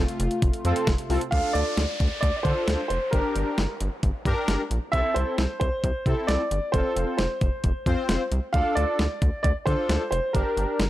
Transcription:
Already playing: analog synth pad C3 A3 F4
0.08 closed hi-hat
0.20 analog synth bass F1, closed hi-hat
0.31 closed hi-hat
0.42 analog synth bass F1, kick, closed hi-hat
0.53 closed hi-hat
0.65 analog synth bass F2, analog polysynth C4 F4 A4, closed hi-hat
0.76 closed hi-hat
0.87 analog synth bass F1, kick, snare, closed hi-hat
0.98 closed hi-hat
1.10 analog synth bass C2, analog polysynth C4 F4 A4, open hi-hat
1.21 closed hi-hat
1.31 analog synth bass D2, analog polysynth D4 F4 A4, grand piano F5, kick, closed hi-hat, downlifter
1.53 analog synth bass D2, grand piano D5, closed hi-hat
1.77 analog synth bass D2, snare, closed hi-hat
2.00 analog synth bass D2, kick, closed hi-hat
2.21 analog synth bass D2, grand piano D5, kick, closed hi-hat
2.37 grand piano D5
2.43 analog synth bass D3, analog polysynth D4 F4 A4, grand piano C5, kick, closed hi-hat
2.68 analog synth bass D2, snare, closed hi-hat
2.88 analog synth bass F1, grand piano C5, closed hi-hat
3.11 analog synth bass G1, analog polysynth D4 G4 A#4, grand piano A#4, kick, closed hi-hat
3.36 analog synth bass G1, closed hi-hat
3.58 analog synth bass G1, snare, closed hi-hat
3.80 analog synth bass G1, closed hi-hat
4.03 analog synth bass G1, kick, closed hi-hat
4.25 analog synth bass G2, analog polysynth D4 G4 A#4, kick, closed hi-hat
4.48 analog synth bass G1, snare, closed hi-hat
4.71 analog synth bass A#1, closed hi-hat
4.92 analog synth bass C2, analog polysynth C4 E4 A4, grand piano E5, kick, closed hi-hat
5.14 analog synth bass C2, grand piano C5, closed hi-hat
5.38 analog synth bass C2, snare, closed hi-hat
5.60 analog synth bass C2, grand piano C5, kick, closed hi-hat
5.84 analog synth bass C2, kick, closed hi-hat
6.06 analog synth bass C3, analog polysynth C4 E4 A4, kick, closed hi-hat
6.27 analog synth bass C2, grand piano D5, snare, closed hi-hat
6.51 analog synth bass G1, closed hi-hat
6.72 analog synth bass F1, analog polysynth C4 F4 A4, grand piano C5, kick, closed hi-hat
6.96 analog synth bass F1, closed hi-hat
7.18 analog synth bass F1, grand piano C5, snare, closed hi-hat
7.41 analog synth bass F1, kick, closed hi-hat
7.64 analog synth bass F1, kick, closed hi-hat
7.86 analog synth bass F2, analog polysynth C4 F4 C5, kick, closed hi-hat
8.09 analog synth bass F1, snare, closed hi-hat
8.32 analog synth bass C2, closed hi-hat
8.53 analog synth bass D2, analog polysynth D4 F4 A4, grand piano F5, kick, closed hi-hat
8.75 analog synth bass D2, grand piano D5, closed hi-hat
8.99 analog synth bass D2, snare, closed hi-hat
9.22 analog synth bass D2, kick, closed hi-hat
9.43 analog synth bass D2, grand piano D5, kick, closed hi-hat
9.66 analog synth bass D3, analog polysynth D4 F4 A4, grand piano C5, kick, closed hi-hat
9.89 analog synth bass D2, snare, closed hi-hat
10.11 analog synth bass F1, grand piano C5, closed hi-hat
10.33 analog synth bass G1, analog polysynth D4 G4 A#4, grand piano A#4, kick, closed hi-hat
10.57 analog synth bass G1, closed hi-hat
10.80 analog synth bass G1, snare, closed hi-hat

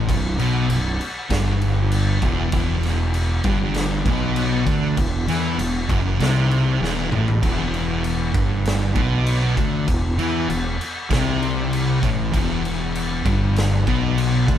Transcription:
0.08 fingered electric bass B0, distorted electric guitar B1, kick, crash
0.39 fingered electric bass B1, distorted electric guitar B2, crash
0.69 fingered electric bass B0, distorted electric guitar B1, crash
1.01 crash
1.30 fingered electric bass G1, distorted electric guitar G2, kick, snare, crash
1.62 crash
1.92 crash
2.22 fingered electric bass E1, distorted electric guitar E2, kick, crash
2.52 fingered electric bass E1, distorted electric guitar E2, kick, crash
2.83 snare, crash
3.14 crash
3.44 fingered electric bass G1, distorted electric guitar G2, kick, crash
3.74 snare, crash
4.06 fingered electric bass B1, distorted electric guitar B2, kick, crash
4.36 crash
4.67 fingered electric bass D2, distorted electric guitar D3, kick, crash
4.97 fingered electric bass E1, distorted electric guitar E2, kick, crash
5.28 fingered electric bass E2, distorted electric guitar E3, snare, crash
5.58 fingered electric bass E1, distorted electric guitar E2, crash
5.89 fingered electric bass F#1, distorted electric guitar F#2, kick, crash
6.20 fingered electric bass C2, distorted electric guitar C3, snare, crash
6.51 crash
6.81 fingered electric bass E1, distorted electric guitar E2, snare
7.12 fingered electric bass A1, distorted electric guitar A2, mid tom
7.28 floor tom
7.43 fingered electric bass E1, distorted electric guitar E2, kick, crash
7.74 crash
8.04 crash
8.34 fingered electric bass G1, distorted electric guitar G2, kick, crash
8.66 snare, crash
8.96 fingered electric bass B1, distorted electric guitar B2, kick, crash
9.27 crash
9.57 fingered electric bass D2, distorted electric guitar D3, kick, crash
9.88 fingered electric bass E1, distorted electric guitar E2, kick, crash
10.18 fingered electric bass E2, distorted electric guitar E3, crash
10.49 fingered electric bass E1, distorted electric guitar E2, crash
10.81 crash
11.11 fingered electric bass C2, distorted electric guitar C3, kick, snare, crash
11.43 crash
11.73 crash
12.03 fingered electric bass A1, distorted electric guitar A2, kick, crash
12.34 fingered electric bass E1, distorted electric guitar E2, kick, crash
12.65 crash
12.95 crash
13.25 fingered electric bass G1, distorted electric guitar G2, kick, crash
13.56 snare, crash
13.86 fingered electric bass B1, distorted electric guitar B2, kick, crash
14.18 crash
14.48 fingered electric bass D2, distorted electric guitar D3, kick, crash

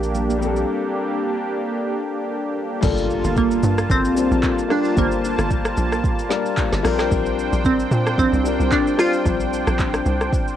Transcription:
Already playing: sub bass A#1, grand piano G3 C4 D4 A#4, analog synth pad A#3 D4 G4
0.03 shaker
0.15 low conga, shaker
0.30 high conga, shaker
0.38 grand piano G3 C4, low conga, shaker
0.43 grand piano D4 A4
0.56 high conga, shaker
2.81 log drum bass G1, grand piano G3 A#3 D4 F4 A4, analog synth pad A#3 F4 A5, kick, crash, impact, shaker
2.97 shaker
3.10 shaker
3.24 log drum bass G1, shaker
3.36 synth pluck A#3, kick, shaker
3.51 shaker
3.63 log drum bass G2, shaker
3.78 cross-stick, shaker
3.90 log drum bass G1, synth pluck C4, kick, shaker
4.04 log drum bass A#1, shaker
4.15 grand piano G3 A#3 D4 F4 C5, shaker
4.31 log drum bass A#1, shaker
4.43 kick, clap, shaker
4.59 shaker
4.68 grand piano G3 A#3 D4 F4 G4, synth pluck D4, cross-stick, open hi-hat, shaker
4.85 shaker
4.95 log drum bass G1, grand piano G3 A#3 D4 F4 C5, synth pluck A#3, kick, shaker
5.12 shaker
5.25 shaker
5.38 log drum bass G1, cross-stick, shaker
5.51 kick, shaker
5.65 cross-stick, shaker
5.77 log drum bass A#1, shaker
5.92 cross-stick, shaker
6.04 kick, shaker
6.19 shaker
6.29 grand piano G3 A#3 D4 F4 A#4, snare, shaker
6.46 shaker
6.57 kick, clap, shaker
6.72 log drum bass G1, snare, shaker
6.83 log drum bass A#1, grand piano G3 C4 D4 F4 A#4, analog synth pad D4 C5 G5, cross-stick, open hi-hat, shaker
6.99 cross-stick, snare, shaker
7.11 log drum bass A#1, kick, shaker
7.26 shaker
7.39 shaker
7.53 log drum bass A#1, shaker
7.65 synth pluck C4, kick, shaker
7.80 shaker
7.91 log drum bass A#2, shaker
8.07 cross-stick, shaker
8.18 log drum bass A#1, synth pluck C4, kick, shaker
8.33 log drum bass C2, shaker
8.43 grand piano G3 C4 D4 F4 A#4, shaker
8.60 log drum bass C2, shaker
8.72 synth pluck D4, kick, clap, shaker
8.87 shaker
8.97 grand piano G3 C4 D4 F4 C5, synth pluck F4, cross-stick, open hi-hat, shaker
9.13 shaker
9.24 log drum bass A#1, grand piano G3 C4 D4 F4 C5, kick, shaker
9.40 shaker
9.53 shaker
9.67 log drum bass A#1, cross-stick, shaker
9.79 kick, clap, shaker
9.94 cross-stick, shaker
10.06 log drum bass C2, shaker
10.21 cross-stick, shaker
10.33 kick, shaker
10.48 shaker

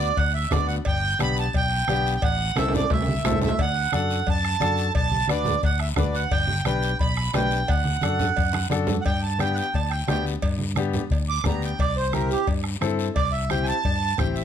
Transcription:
Already playing: fingered electric bass D2, accordion D5
0.17 fingered electric bass D2, accordion F#5, bombo low, cowbell, long guiro
0.34 accordion E5
0.51 fingered electric bass D2, upright piano B3 D4 F#4, accordion D5, bombo low, bombo rim, high conga, low conga, low timbale, short guiro
0.67 accordion F#5, short guiro
0.85 fingered electric bass G1, accordion G5, bombo low, cowbell, long guiro
1.19 fingered electric bass B1, upright piano B3 D4 G4, accordion B5, bombo rim, high conga, short guiro
1.36 accordion A5, short guiro
1.53 fingered electric bass B1, accordion G5, bombo low, cowbell, long guiro
1.88 fingered electric bass B1, upright piano B3 D4 G4, bombo rim, high conga, short guiro
2.07 short guiro
2.16 accordion G5
2.22 fingered electric bass A1, accordion F#5, bombo low, cowbell, long guiro
2.56 fingered electric bass C2, upright piano C4 E4 A4, accordion E5, bombo rim, high conga, high timbale, short guiro
2.68 high timbale
2.74 accordion D5, low conga, short guiro
2.80 high timbale
2.90 fingered electric bass C2, accordion E5, bombo low, cowbell, low timbale, long guiro
3.02 high timbale
3.08 high conga
3.24 fingered electric bass C2, upright piano C4 E4 A4, bombo rim, low timbale, short guiro
3.31 low conga
3.42 accordion E5, low conga, short guiro
3.48 low timbale
3.59 fingered electric bass D2, accordion F#5, bombo low, cowbell, long guiro
3.92 fingered electric bass F#2, upright piano D4 F#4 A4, accordion F#5, bombo rim, high conga, short guiro
4.10 short guiro
4.26 fingered electric bass F#2, accordion A5, bombo low, cowbell, long guiro
4.45 bombo rim
4.60 fingered electric bass F#2, upright piano D4 F#4 A4, bombo rim, high conga, short guiro
4.78 short guiro
4.95 fingered electric bass B1, accordion A5, bombo low, cowbell, long guiro
5.11 high conga
5.28 fingered electric bass D2, upright piano D4 F#4 B4, accordion D5, bombo rim, high conga, short guiro
5.45 low conga, short guiro
5.63 fingered electric bass D2, accordion F#5, bombo low, cowbell, long guiro
5.80 accordion E5, bombo rim
5.96 fingered electric bass D2, upright piano D4 F#4 B4, accordion D5, bombo low, bombo rim, high conga, low conga, short guiro
6.15 accordion F#5, short guiro
6.31 fingered electric bass G1, accordion G5, bombo low, cowbell, long guiro
6.47 high conga
6.65 fingered electric bass B1, upright piano D4 G4 B4, accordion G5, bombo rim, high conga, short guiro
6.82 short guiro
6.99 fingered electric bass B1, accordion B5, bombo low, cowbell, long guiro
7.17 bombo rim
7.33 fingered electric bass B1, upright piano D4 G4 B4, accordion G5, bombo rim, high conga, low timbale, short guiro
7.51 short guiro
7.68 fingered electric bass D2, accordion F#5, bombo low, cowbell, long guiro
7.85 high conga
8.01 fingered electric bass F#2, upright piano D4 F#4 A4, bombo rim, high conga, short guiro
8.19 low conga, short guiro
8.36 fingered electric bass F#2, bombo low, cowbell, long guiro
8.53 bombo rim, high conga
8.70 fingered electric bass F#2, upright piano D4 F#4 A4, bombo rim, high conga, short guiro
8.87 low conga, short guiro
9.01 accordion F#5, long guiro
9.05 fingered electric bass G2, accordion G5, bombo low, cowbell
9.22 accordion A5
9.39 upright piano B3 D4 G4, accordion G5, bombo rim, high conga, short guiro
9.54 accordion F#5 G5, short guiro
9.74 fingered electric bass D2, accordion A5, bombo low, cowbell, long guiro
9.90 accordion G5, bombo rim
10.08 fingered electric bass D2, upright piano B3 D4 G4, accordion G5, bombo rim, high conga, low timbale, short guiro
10.26 short guiro
10.42 fingered electric bass G2, bombo low, cowbell, long guiro
10.58 high conga
10.76 upright piano B3 D4 G4, bombo rim, high conga, short guiro
10.93 low conga, short guiro
11.10 fingered electric bass D2, bombo low, cowbell, long guiro
11.29 accordion D6
11.44 fingered electric bass D2, upright piano B3 D4 G4, accordion A#5, bombo low, bombo rim, high conga, low conga, short guiro
11.62 accordion G5, short guiro
11.79 fingered electric bass C2, accordion D5, bombo low, cowbell, long guiro
11.96 accordion C5
12.13 upright piano C4 E4 G4, accordion A#4, bombo rim, high conga, short guiro
12.31 accordion G4, short guiro
12.47 fingered electric bass G2, bombo low, cowbell, long guiro
12.64 bombo rim
12.81 fingered electric bass G2, upright piano C4 E4 A4, bombo rim, high conga, short guiro
12.99 short guiro
13.15 fingered electric bass C2, accordion D5, bombo low, cowbell, long guiro
13.32 accordion E5
13.50 upright piano C4 E4 G4, accordion G5, bombo rim, high conga, short guiro
13.63 accordion G#5, short guiro
13.68 accordion A5
13.84 fingered electric bass G2, bombo low, cowbell, long guiro
14.18 fingered electric bass A1, upright piano C4 E4 G4, accordion G5, bombo low, bombo rim, high conga, low conga, short guiro
14.36 accordion E5, short guiro

